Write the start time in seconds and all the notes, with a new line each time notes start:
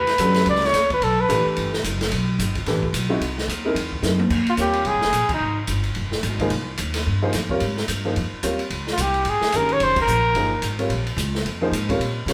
Already playing: E2 B4
0.07 snare, ride
0.18 F#2 D3 G3 C#4 F#4 A4, hi-hat pedal, ride
0.34 snare, ride
0.46 C#2 D5, ride
0.55 snare
0.62 C#5, snare, ride
0.73 D2, snare, hi-hat pedal, ride
0.90 B4, kick, ride
1.01 B1 A4, ride
1.21 B4
1.28 A1 E3 A3 D4 G4 B4, hi-hat pedal, ride
1.45 muted upright bass stroke
1.56 G1, ride
1.73 snare
1.84 F#1, hi-hat pedal, ride
2.01 snare, ride
2.12 B1, ride
2.39 G1, hi-hat pedal, ride
2.55 kick, ride
2.66 A1 E3 A3 D4 G4 B4, snare, ride
2.83 kick
2.93 B1, hi-hat pedal, ride
3.09 G#3 C4 D#4 E4 F#4
3.20 C2, ride
3.38 snare
3.48 D#2, hi-hat pedal, ride
3.65 G#3 C4 D#4 E4 A#4
3.75 E2, ride
3.92 kick
4.02 F#2 G#3 C4 D#4 E4 A#4, snare, hi-hat pedal
4.19 high tom
4.30 F2, kick, crash
4.46 F4, muted upright bass stroke, ride
4.57 D#2 C3 G3 F4 G4 A#4 C#5, hi-hat pedal, ride
4.73 ride
4.85 C2 G#4, ride
4.94 G#1
5.01 F1, snare
5.12 A#1, hi-hat pedal, ride
5.29 muted upright bass stroke, kick, crash
5.34 D#4
5.40 G#1
5.67 G1, hi-hat pedal, ride
5.84 ride
5.95 F1, ride
6.12 snare
6.23 G#1, hi-hat pedal, ride
6.39 F3 A#3 D#4 G#4 C5, kick, ride
6.50 C2, ride
6.77 D#2, hi-hat pedal, ride
6.94 snare, ride
7.07 G2
7.22 F3 A#3 D#4 G#4 C5
7.33 F2, snare, hi-hat pedal, ride
7.49 G3 C4 F4 A#4 C#5, kick
7.60 G#2, ride
7.77 snare
7.88 G2, hi-hat pedal, ride
8.05 F3 A#3 D#4 G#4 C5
8.16 F2, ride
8.32 muted upright bass stroke
8.43 D#2 G3 C4 F4 A#4 C#5, hi-hat pedal, ride
8.59 ride
8.70 C#2, ride
8.87 snare
8.92 F4
8.97 C2 G4, hi-hat pedal, ride
9.14 ride
9.25 G#1, ride
9.29 G#4
9.41 muted upright bass stroke, snare
9.52 G1 D#3 G#3 C#4 G4 A#4, hi-hat pedal, ride
9.56 A#4
9.69 C#5, ride
9.80 F1 C5, ride
9.96 kick, crash
10.02 A#4
10.07 A#1, hi-hat pedal
10.34 G1 F3 A#3 D#4 G#4 C5, ride
10.62 G#1, hi-hat pedal, ride
10.78 G3 C4 F4 A#4 C#5, ride
10.89 A#1, ride
11.07 ride
11.17 C#2, hi-hat pedal, ride
11.35 snare
11.44 F2, ride
11.61 F3 A#3 D#4 G#4 C5
11.71 G#2, hi-hat pedal, ride
11.88 G3 C4 F4 A#4 C#5, kick, ride
11.99 A#2, ride
12.26 C3 G3 C4 F4 A#4 C#5, snare, hi-hat pedal, ride